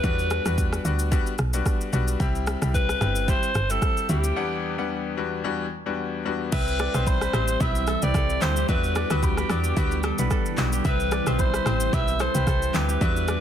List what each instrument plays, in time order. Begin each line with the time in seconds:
Already playing: alto saxophone B4
0.03 log drum bass E2, grand piano G3 B3 D4 F#4, kick, shaker
0.19 shaker
0.30 cross-stick, shaker
0.45 log drum bass E2, grand piano G3 B3 D4 F#4, cross-stick, shaker
0.58 kick, shaker
0.73 cross-stick, shaker
0.85 log drum bass D2, grand piano G3 B3 D4 F#4, shaker
0.99 shaker
1.11 grand piano G3 B3 D4 F#4, kick, shaker
1.27 shaker
1.38 log drum bass B1, cross-stick, shaker
1.53 grand piano G3 B3 D4 F#4, shaker
1.66 kick, cross-stick, shaker
1.81 shaker
1.93 log drum bass B1, grand piano G3 B3 D4 F#4, shaker
2.08 shaker
2.20 log drum bass C2, grand piano G3 C4 E4 G4, kick, shaker
2.35 shaker
2.47 cross-stick, shaker
2.61 log drum bass C2, grand piano G3 C4 E4 G4, cross-stick, shaker
2.74 alto saxophone B4, kick, shaker
2.89 cross-stick, shaker
3.01 log drum bass G1, grand piano G3 C4 E4 G4, cross-stick, shaker
3.16 shaker
3.28 grand piano G3 C4 E4 G4, alto saxophone C5, kick, shaker
3.43 shaker
3.55 log drum bass G1, cross-stick, shaker
3.70 grand piano G3 C4 E4 G4, alto saxophone A4, shaker
3.82 kick, cross-stick, shaker
3.97 shaker
4.09 log drum bass D2, grand piano G3 C4 E4 G4, alto saxophone G4, shaker
4.24 shaker
4.36 grand piano E2 G3 B3 D4 F#5
4.78 grand piano E2 G3 B3 D4 F#5
5.17 grand piano E2 G3 B3 D4 F#4
5.44 grand piano E2 G3 B3 D4 F#4
5.86 grand piano E2 G3 B3 D4 F#4
6.25 grand piano E2 G3 B3 D4 F#4
6.52 log drum bass C2, ambient pad E3 G3 C4 E4 G4, grand piano G3 C4 E4 G4, alto saxophone B4, kora E5, kick, crash, high agogo, shaker
6.68 shaker
6.79 kora D5, cross-stick, shaker
6.94 log drum bass B1, grand piano G3 C4 E4 G4, kora C5, cross-stick, high agogo, shaker
7.07 alto saxophone C5, kick, low woodblock, shaker
7.21 kora B4, cross-stick, shaker
7.33 log drum bass A1, grand piano G3 C4 E4 G4, kora C5, cross-stick, high agogo, shaker
7.48 shaker
7.60 log drum bass B1, grand piano G3 C4 E4 G4, kora B4, alto saxophone E5, kick, high agogo, shaker
7.75 shaker
7.87 kora A4, cross-stick, high agogo, shaker
8.02 log drum bass C2, grand piano G3 C4 E4 G4, kora B4, alto saxophone D5, shaker
8.14 log drum bass C2, kora A4, kick, cross-stick, shaker
8.30 shaker
8.42 log drum bass D2, grand piano G3 C4 E4 G4, kora G4, alto saxophone C5, clap, high agogo, shaker
8.56 kora G4, shaker
8.68 log drum bass E2, ambient pad D3 E3 G3 B3 E4, grand piano G3 B3 D4 F#4, alto saxophone B4, kora E5, kick, high agogo, shaker
8.84 shaker
8.95 kora D5, cross-stick, shaker
9.10 log drum bass D2, grand piano G3 B3 D4 F#4, kora B4, cross-stick, high agogo, shaker
9.23 alto saxophone G4, kick, low woodblock, shaker
9.37 kora B4, cross-stick, shaker
9.50 log drum bass E2, grand piano G3 B3 D4 F#4, kora D5, cross-stick, high agogo, shaker
9.64 shaker
9.77 log drum bass D2, grand piano G3 B3 D4 F#4, kora B4, kick, high agogo, shaker
9.91 shaker
10.03 kora A4, cross-stick, high agogo, shaker
10.18 log drum bass B1, grand piano G3 B3 D4 F#5, kora B4, shaker
10.31 kora A4, kick, cross-stick, shaker
10.46 shaker
10.58 log drum bass B1, grand piano G3 B3 D4 F#4, kora G4, clap, high agogo, shaker
10.73 kora G4, shaker
10.85 log drum bass C2, grand piano G3 C4 E4 G4, ambient pad C4 E4 G4, alto saxophone B4, kora E5, kick, high agogo, shaker
11.00 shaker
11.11 kora D5, cross-stick, shaker
11.27 log drum bass B1, grand piano G3 C4 E4 G4, kora C5, cross-stick, high agogo, shaker
11.39 alto saxophone C5, kick, low woodblock, shaker
11.54 kora B4, cross-stick, shaker
11.66 log drum bass A1, grand piano G3 C4 E4 G4, kora C5, cross-stick, high agogo, shaker
11.80 shaker
11.93 log drum bass B1, grand piano G3 C4 E4 G4, kora B4, alto saxophone E5, kick, high agogo, shaker
12.08 shaker
12.20 kora A4, alto saxophone C5, cross-stick, high agogo, shaker
12.34 log drum bass C2, grand piano G3 C4 E4 G4, kora B4, shaker
12.47 log drum bass C2, kora A4, kick, cross-stick, shaker
12.62 shaker
12.74 log drum bass D2, grand piano G3 C4 E4 G4, kora G4, alto saxophone B4, clap, high agogo, shaker
12.89 kora G4, shaker
13.01 log drum bass E2, ambient pad D3 G3 B3 E4, grand piano G3 B3 D4 F#4, kora E5, kick, high agogo, shaker
13.16 shaker
13.28 kora D5, cross-stick, shaker